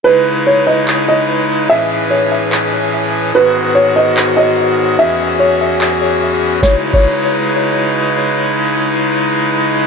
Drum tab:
CC |----------------|----------------|----------------|----------------|
CP |--------x-------|--------x-------|--------x-------|--------x-------|
SD |----------------|----------------|----------------|----------------|
BD |----------------|----------------|----------------|----------------|

CC |---x------------|----------------|
CP |----------------|----------------|
SD |o---------------|----------------|
BD |o--o------------|----------------|